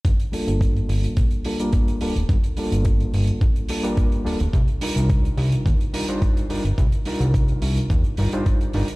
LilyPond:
<<
  \new Staff \with { instrumentName = "Reed electric piano" } { \time 4/4 \key g \minor \tempo 4 = 107 r8 <g bes d' f' a'>2 <g bes d' f' a'>16 <g bes d' f' bes'>8. <g bes d' f' a'>16 r16 | r8 <g bes d' f' a'>2 <g bes d' f' a'>16 <g bes d' f' bes'>8. <g bes d' f' a'>16 r16 | r8 <g d' ees' f' bes'>2 <g d' ees' f' bes'>16 <g d' ees' f' c''>8. <g d' ees' f' bes'>16 r16 | r8 <g d' ees' f' bes'>2 <g d' ees' f' bes'>16 <g d' ees' f' c''>8. <g d' ees' f' bes'>16 r16 | }
  \new Staff \with { instrumentName = "Analog synth bass" } { \clef bass \time 4/4 \key g \minor g,,16 r8 g,,8 r16 g,,16 r16 bes,,16 r4 r16 d,,16 d,,16 | g,,16 r8 g,,8 r16 g,,16 r16 bes,,16 r4 r16 d,,16 d,,16 | c,16 r8 c,8 r16 c,16 r16 ees,16 r4 r16 g,,16 g,,16 | c,16 r8 c,8 r16 c,16 r16 ees,16 g,,16 g,,16 r8. g,,16 r16 | }
  \new DrumStaff \with { instrumentName = "Drums" } \drummode { \time 4/4 <hh bd>16 hh16 hho16 hh16 <hh bd>16 hh16 hho16 hh16 <hh bd>16 hh16 hho16 hh16 <hh bd>16 hh16 hho16 hh16 | <hh bd>16 hh16 hho16 hh16 <hh bd>16 hh16 hho16 hh16 <hh bd>16 hh16 hho16 hh16 <hh bd>16 hh16 hho16 hh16 | <hh bd>16 hh16 hho16 hh16 <hh bd>16 hh16 hho16 hh16 <hh bd>16 hh16 hho16 hh16 <hh bd>16 hh16 hho16 hh16 | <hh bd>16 hh16 hho16 hh16 <hh bd>16 hh16 hho16 hh16 <hh bd>16 hh16 hho16 hh16 <hh bd>16 hh16 hho16 hh16 | }
>>